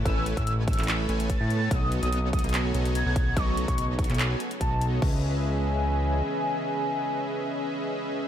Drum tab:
CC |--------------------------------|--------------------------------|--------------------------------|x-------------------------------|
HH |x---x-x-x---xxxxx---x-x-x---x---|x---x-x-x---xxxxx---x-x-x---x---|x---x-x-x---xxxxx---x-x-x---x---|--------------------------------|
CP |--------------x-x---------------|----------------x---------------|--------------x-x---------------|--------------------------------|
BD |o-----o-----o-----------o-------|o-----------o---------------o---|o-----o-----o-----------o-------|o-------------------------------|

CC |--------------------------------|
HH |--------------------------------|
CP |--------------------------------|
BD |--------------------------------|